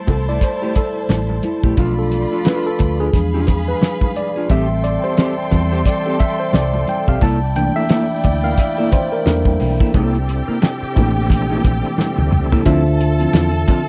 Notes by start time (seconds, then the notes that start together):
Already playing: G3 A3 E4 C5 A5
0.07 C2 A4, muted clean electric guitar stroke, kick, closed hi-hat, muted conga, low conga
0.28 A3 E4 A4 D5
0.41 C5, muted clean electric guitar stroke, kick, snare, closed hi-hat
0.62 A3 E4 G4
0.75 A4, muted clean electric guitar stroke, kick, closed hi-hat, muted conga
0.96 muted clean electric guitar stroke
1.09 A1, muted clean electric guitar stroke, snare, closed hi-hat, high conga
1.29 muted clean electric guitar stroke, high conga
1.43 E4, closed hi-hat, high conga
1.63 A#1 A3 E4 G4, kick
1.77 B1 F3 A3 D4 F4 A4 D5 B5, kick, closed hi-hat, muted conga
1.99 A4
2.11 muted clean electric guitar stroke, closed hi-hat, muted conga
2.32 D4 F4 A4
2.45 D4 F4 A4 B4, snare, closed hi-hat, high conga
2.66 A4
2.79 D2, muted clean electric guitar stroke, kick, closed hi-hat, muted conga
3.00 D4 F4 G#4 B4
3.13 E2 F3 G#3 D4 G#4 F5 B5, muted clean electric guitar stroke, kick, snare, closed hi-hat
3.34 D4 F4 G#4
3.47 kick, closed hi-hat, muted conga, low conga
3.68 B4, muted clean electric guitar stroke
3.81 muted clean electric guitar stroke, snare, closed hi-hat, high conga
4.01 muted clean electric guitar stroke, kick, high conga
4.16 D5, closed hi-hat, high conga
4.36 D4 F4 G#4
4.50 A1 E3 G3 C4 G4 A4 E5 G5 C6, kick, closed hi-hat, muted conga
4.84 D5, muted clean electric guitar stroke, closed hi-hat
5.04 C4 G4 A4 C5
5.17 C4 G4 A4, snare, closed hi-hat, high conga
5.51 E2 E3 G3 C4, muted clean electric guitar stroke, kick, closed hi-hat, muted conga, low conga
5.71 C4 G4 C5
5.85 D5, kick, snare, closed hi-hat
6.06 C4 G4 A4
6.20 E5, kick, closed hi-hat, muted conga
6.40 C5, muted clean electric guitar stroke
6.53 C2 D5, muted clean electric guitar stroke, snare, closed hi-hat, high conga
6.74 muted clean electric guitar stroke, high conga
6.87 G5, closed hi-hat, high conga
7.07 B1 C4 G4 A4 F5, kick
7.21 C2 A#3 E4 A4 D5 G5 A5, kick, closed hi-hat, muted conga
7.56 E3 A3 A#3 D4 G5, muted clean electric guitar stroke, closed hi-hat, muted conga
7.76 A#3 E4 A4 E5
7.89 A#3 E4 A4, snare, closed hi-hat, high conga
8.24 D2 D5, muted clean electric guitar stroke, kick, closed hi-hat, muted conga
8.44 A#3 E4 A#4 F5
8.58 E5, muted clean electric guitar stroke, kick, snare, closed hi-hat
8.78 A#3 E4 A4
8.92 C5, kick, closed hi-hat, muted conga, low conga
9.12 A#4, muted clean electric guitar stroke
9.26 E2 E3 A#3 D4 A4 A#4, muted clean electric guitar stroke, snare, closed hi-hat, high conga
9.45 muted clean electric guitar stroke, kick, high conga
9.60 B1, open hi-hat, high conga
9.80 A#3 E4 A4, kick
9.94 C2 C3 A#3 C4 D4 E4 G4 A4 G5, kick, closed hi-hat, muted conga
10.14 closed hi-hat
10.28 muted clean electric guitar stroke, closed hi-hat
10.48 A#3 E4 A#4, muted fingered electric bass stroke
10.62 snare, closed hi-hat, high conga
10.82 muted fingered electric bass stroke
10.96 A1 E3 A3 A#3 D4 E4 A4, kick, closed hi-hat, muted conga, low conga
11.16 muted clean electric guitar stroke
11.30 A#1, muted clean electric guitar stroke, kick, snare, closed hi-hat
11.50 A#3 E4 A4
11.64 A#1, kick, closed hi-hat, muted conga
11.84 muted clean electric guitar stroke, closed hi-hat
11.98 muted clean electric guitar stroke, snare, high conga
12.18 D2, muted clean electric guitar stroke, high tom, high conga
12.32 C#2, mid tom
12.52 A#3 E4 A4, floor tom
12.65 D2 D3 F3 C4 D4 E4 F4 A4 C5 E5 A5, kick, closed hi-hat, muted conga
12.86 closed hi-hat
13.00 muted clean electric guitar stroke, closed hi-hat
13.20 F3 C4 E4, closed hi-hat
13.33 E2 F3 C4 E4, snare, closed hi-hat, high conga
13.54 muted clean electric guitar stroke
13.68 F3 C4 F4, kick, closed hi-hat, muted conga